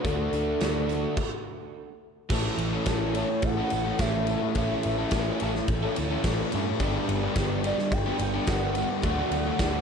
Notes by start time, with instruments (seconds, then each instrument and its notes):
0.04 picked electric bass D2, overdriven electric guitar D3 A3 D4 F#4, soft synth lead A4, kick, closed hi-hat
0.32 picked electric bass D2, overdriven electric guitar A3 D4 F#4, closed hi-hat
0.60 picked electric bass D2, overdriven electric guitar D3 A3 D4 F#4, snare, closed hi-hat
0.88 overdriven electric guitar A3 D4 F#4, closed hi-hat
1.17 kick, crash
2.30 picked electric bass A1, overdriven electric guitar A2 E3 A3 C#4 E4 A4, kick, crash, tambourine
2.58 picked electric bass A1, ride
2.73 overdriven electric guitar A3 C#4 E4 A4
2.86 picked electric bass A1, overdriven electric guitar A2 E3 A3 C#4 E4 A4, kick, snare, ride, tambourine
3.14 overdriven electric guitar A2 E3 A3 C#4 E4 A4, soft synth lead C#5, ride, tambourine
3.29 muted overdriven electric guitar stroke
3.42 picked electric bass A1, soft synth lead F#5, kick, ride, tambourine
3.57 overdriven electric guitar A3 C#4 E4 A4
3.70 picked electric bass A1, overdriven electric guitar E3 A3 C#4 E4, muted overdriven electric guitar stroke, ride, tambourine
3.85 overdriven electric guitar A3 C#4 E4 A4
3.99 picked electric bass A1, overdriven electric guitar A2 E3 A3 C#4 E4 A4, soft synth lead E5, kick, snare, ride, tambourine
4.27 overdriven electric guitar E3 A3 C#4 E4 A4, ride, tambourine
4.42 overdriven electric guitar A3 C#4 A4, muted overdriven electric guitar stroke
4.54 picked electric bass A1, overdriven electric guitar A2 E3 A3 C#4 E4 A4, soft synth lead E5, kick, ride, tambourine
4.83 picked electric bass A1, ride
4.98 overdriven electric guitar A3 C#4 E4 A4
5.11 picked electric bass A1, overdriven electric guitar A2 E3 A3 C#4 E4, kick, snare, ride, tambourine
5.15 overdriven electric guitar A4
5.40 picked electric bass A1, overdriven electric guitar A2 E3 A3 C#4 E4 A4, ride
5.54 muted overdriven electric guitar stroke, snare
5.68 picked electric bass A1, kick, ride, tambourine
5.82 overdriven electric guitar A3 C#4 E4 A4
5.95 picked electric bass D2, overdriven electric guitar E3 A3 C#4 E4, muted overdriven electric guitar stroke, ride, tambourine
6.09 overdriven electric guitar C#4 E4 A4
6.13 overdriven electric guitar A3
6.24 picked electric bass A1, overdriven electric guitar A2 E3 A3 C#4 E4 A4, kick, snare, ride, tambourine
6.52 picked electric bass G2, overdriven electric guitar E3 A3 C#4 E4 A4, ride, tambourine
6.66 overdriven electric guitar A3 C#4 A4, muted overdriven electric guitar stroke
6.80 picked electric bass G1, overdriven electric guitar G2 D3 G3 B3 D4 G4, kick, ride, tambourine
7.09 picked electric bass G1, ride
7.24 overdriven electric guitar G3 B3 D4 G4
7.35 picked electric bass G1, overdriven electric guitar G2 D3 G3 B3 D4 G4, kick, snare, ride, tambourine
7.63 overdriven electric guitar G2 D3 G3 B3 D4 G4, soft synth lead D5, ride, tambourine
7.79 muted overdriven electric guitar stroke, snare
7.90 picked electric bass G1, soft synth lead G5, kick, ride, tambourine
8.06 overdriven electric guitar G3 B3 D4 G4
8.19 picked electric bass G1, overdriven electric guitar D3 G3 B3, muted overdriven electric guitar stroke, ride, tambourine
8.23 overdriven electric guitar D4
8.34 overdriven electric guitar G3 B3 D4 G4
8.47 picked electric bass G1, overdriven electric guitar G2 D3 G3 B3 D4, soft synth lead F#5, kick, snare, ride, tambourine
8.51 overdriven electric guitar G4
8.75 overdriven electric guitar D3 G3 B3 D4, ride, tambourine
8.79 overdriven electric guitar G4
8.90 overdriven electric guitar G3 B3 D4 G4, muted overdriven electric guitar stroke
9.02 picked electric bass D2, overdriven electric guitar D3 F#3 A3 D4, soft synth lead F#5, kick, ride, tambourine
9.07 overdriven electric guitar F#4
9.31 picked electric bass D2, ride
9.46 overdriven electric guitar F#3 A3 D4 F#4
9.58 picked electric bass D2, overdriven electric guitar D3 F#3 A3 D4 F#4, kick, snare, ride, tambourine